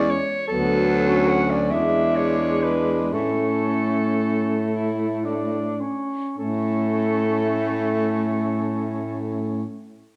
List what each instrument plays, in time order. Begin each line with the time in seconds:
Already playing: baritone saxophone E2, tenor saxophone G#3, alto saxophone C#4, soprano saxophone D5
0.11 soprano saxophone C#5
0.48 baritone saxophone D2, tenor saxophone F#3, alto saxophone B3, soprano saxophone A4
1.08 alto saxophone C#4
1.28 soprano saxophone F#5
1.50 soprano saxophone D5
1.71 baritone saxophone E2, tenor saxophone G#3, alto saxophone D4, soprano saxophone E5
2.16 soprano saxophone C#5
2.63 soprano saxophone B4
3.13 baritone saxophone A2, tenor saxophone A3, alto saxophone C#4, soprano saxophone A4
4.70 alto saxophone E4
5.25 alto saxophone D4
5.81 alto saxophone C#4
6.37 baritone saxophone A2, tenor saxophone A3, alto saxophone C#4, soprano saxophone A4